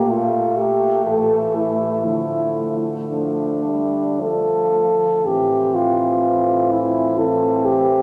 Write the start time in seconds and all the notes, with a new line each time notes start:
Already playing: A#2 A3 A#3 G4
0.09 A3 F4
0.57 G4
1.04 A2 E3 A4
1.55 E4
2.04 D3 F3 A3 E4
3.08 F3 D4
3.65 G3
4.19 F3 A4
5.24 A2 E3 C4 G4
5.75 F4
6.72 E4
7.18 E3 C4 A4
7.65 G4